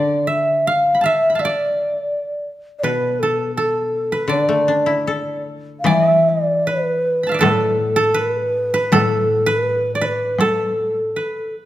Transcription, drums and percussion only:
5.86 taiko rim soft
5.86 taiko high soft
7.43 taiko rim soft
7.43 taiko high soft
8.93 taiko rim soft
8.93 taiko high medium
10.39 taiko rim soft
10.39 taiko high soft

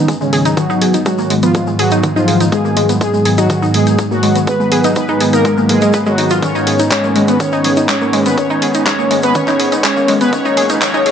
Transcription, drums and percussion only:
0.08 kick loud
0.08 closed hi-hat medium
0.08 shaker medium
0.21 shaker soft
0.33 open hi-hat medium
0.45 closed hi-hat medium
0.45 shaker medium
0.57 kick loud
0.57 closed hi-hat medium
0.57 shaker medium
0.70 shaker soft
0.82 open hi-hat loud
0.94 closed hi-hat medium
0.94 shaker medium
1.06 kick loud
1.06 closed hi-hat medium
1.06 shaker medium
1.18 shaker soft
1.30 open hi-hat loud
1.43 closed hi-hat medium
1.43 shaker medium
1.54 kick loud
1.54 closed hi-hat medium
1.54 shaker medium
1.67 shaker soft
1.79 open hi-hat loud
1.91 closed hi-hat medium
1.91 shaker medium
2.03 kick loud
2.03 closed hi-hat medium
2.03 shaker medium
2.17 shaker soft
2.28 open hi-hat medium
2.40 closed hi-hat medium
2.40 shaker medium
2.52 kick loud
2.52 closed hi-hat medium
2.52 shaker medium
2.65 shaker soft
2.77 open hi-hat loud
2.89 closed hi-hat medium
2.89 shaker medium
3.01 kick loud
3.01 closed hi-hat medium
3.01 shaker medium
3.14 shaker soft
3.25 open hi-hat medium
3.38 closed hi-hat medium
3.38 shaker medium
3.50 kick loud
3.50 closed hi-hat medium
3.50 shaker medium
3.62 shaker soft
3.74 open hi-hat loud
3.87 closed hi-hat medium
3.87 shaker medium
3.99 kick loud
3.99 closed hi-hat medium
3.99 shaker medium
4.11 shaker soft
4.23 open hi-hat medium
4.35 closed hi-hat medium
4.35 shaker medium
4.47 kick loud
4.47 closed hi-hat medium
4.47 shaker medium
4.60 shaker soft
4.72 open hi-hat loud
4.84 closed hi-hat medium
4.84 shaker medium
4.96 kick loud
4.96 closed hi-hat medium
4.96 shaker medium
5.08 shaker soft
5.21 open hi-hat loud
5.33 closed hi-hat soft
5.33 shaker medium
5.45 kick loud
5.45 closed hi-hat medium
5.45 shaker medium
5.57 shaker soft
5.69 open hi-hat loud
5.81 closed hi-hat medium
5.81 shaker medium
5.93 kick loud
5.93 closed hi-hat medium
5.93 shaker medium
6.06 shaker soft
6.18 open hi-hat medium
6.30 closed hi-hat soft
6.30 shaker medium
6.42 kick loud
6.42 closed hi-hat medium
6.42 mid tom medium
6.42 shaker medium
6.55 shaker soft
6.67 open hi-hat loud
6.79 closed hi-hat medium
6.79 shaker medium
6.90 kick loud
6.90 clap loud
6.90 closed hi-hat medium
6.90 shaker medium
7.04 mid tom loud
7.04 shaker soft
7.16 open hi-hat medium
7.28 closed hi-hat medium
7.28 shaker medium
7.40 kick loud
7.40 closed hi-hat medium
7.40 shaker medium
7.52 shaker soft
7.64 mid tom medium
7.64 open hi-hat loud
7.77 closed hi-hat medium
7.77 shaker medium
7.89 kick loud
7.89 clap loud
7.89 closed hi-hat medium
7.89 shaker medium
8.01 shaker soft
8.13 open hi-hat medium
8.26 closed hi-hat medium
8.26 mid tom medium
8.26 shaker medium
8.38 kick loud
8.38 closed hi-hat medium
8.38 shaker medium
8.50 shaker soft
8.62 open hi-hat loud
8.74 closed hi-hat medium
8.74 shaker medium
8.86 kick loud
8.86 clap loud
8.86 closed hi-hat medium
8.86 mid tom loud
8.86 shaker medium
8.99 shaker soft
9.11 open hi-hat medium
9.23 closed hi-hat medium
9.23 shaker medium
9.35 kick loud
9.35 closed hi-hat medium
9.35 shaker medium
9.47 clap soft
9.47 mid tom loud
9.47 shaker soft
9.60 open hi-hat loud
9.72 closed hi-hat medium
9.72 shaker medium
9.84 kick loud
9.84 clap loud
9.84 closed hi-hat medium
9.84 shaker medium
9.97 shaker soft
10.08 mid tom loud
10.08 open hi-hat medium
10.21 closed hi-hat medium
10.21 shaker medium
10.33 kick loud
10.33 closed hi-hat medium
10.33 shaker medium
10.45 shaker soft
10.57 open hi-hat loud
10.70 closed hi-hat medium
10.70 mid tom medium
10.70 shaker medium
10.81 kick loud
10.81 clap loud
10.81 closed hi-hat medium
10.81 shaker medium
10.94 shaker soft
11.06 open hi-hat medium

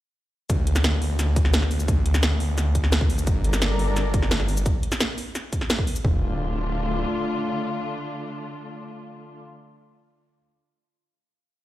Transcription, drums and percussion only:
0.50 kick loud
0.50 closed hi-hat medium
0.50 shaker soft
0.67 closed hi-hat loud
0.76 snare medium
0.76 shaker medium
0.84 snare loud
0.84 closed hi-hat medium
0.84 shaker soft
1.02 open hi-hat medium
1.19 snare soft
1.19 closed hi-hat medium
1.19 shaker medium
1.36 kick loud
1.36 closed hi-hat loud
1.36 shaker soft
1.45 snare soft
1.54 snare loud
1.54 closed hi-hat medium
1.54 shaker soft
1.62 snare soft
1.71 open hi-hat medium
1.71 shaker soft
1.80 shaker medium
1.88 kick loud
1.88 closed hi-hat medium
1.88 shaker soft
2.06 closed hi-hat loud
2.14 snare medium
2.14 shaker medium
2.23 snare loud
2.23 closed hi-hat medium
2.23 shaker soft
2.40 open hi-hat medium
2.58 snare soft
2.58 closed hi-hat medium
2.58 shaker soft
2.75 kick medium
2.75 closed hi-hat loud
2.75 shaker soft
2.84 snare soft
2.92 snare loud
2.92 closed hi-hat medium
2.92 shaker soft
3.01 kick loud
3.10 open hi-hat medium
3.10 shaker soft
3.18 shaker medium
3.27 kick loud
3.27 closed hi-hat medium
3.27 shaker soft
3.44 closed hi-hat loud
3.53 snare medium
3.53 shaker medium
3.62 snare loud
3.62 closed hi-hat medium
3.62 shaker soft
3.79 open hi-hat medium
3.96 snare soft
3.96 closed hi-hat medium
3.96 shaker soft
4.14 kick loud
4.14 closed hi-hat medium
4.14 shaker soft
4.22 snare soft
4.31 snare loud
4.31 closed hi-hat medium
4.31 shaker soft
4.40 snare soft
4.48 open hi-hat medium
4.48 shaker soft
4.57 shaker medium
4.66 kick loud
4.66 closed hi-hat medium
4.66 shaker soft
4.83 closed hi-hat medium
4.92 snare medium
4.92 shaker medium
5.00 snare loud
5.00 closed hi-hat medium
5.00 shaker soft
5.18 open hi-hat medium
5.18 shaker soft
5.35 snare soft
5.35 closed hi-hat medium
5.35 shaker soft
5.53 kick medium
5.53 closed hi-hat medium
5.53 shaker soft
5.61 snare soft
5.70 snare loud
5.70 closed hi-hat medium
5.70 shaker soft
5.79 kick loud
5.87 open hi-hat medium
5.87 shaker soft
5.96 shaker medium
6.05 kick loud
6.05 floor tom loud

